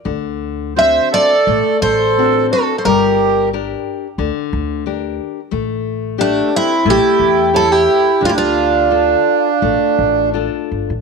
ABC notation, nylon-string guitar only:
X:1
M:4/4
L:1/8
Q:1/4=88
K:Dm
V:1 name="Nylon-string guitar"
D,2 [CD^F]2 A,2 [CDF]2 | G,2 [DGB]2 D,2 [DGB]2 | A,2 [DGA]2 A,2 [GA^c]2 | D,2 [DFA]2 A,2 [DFA]2 |]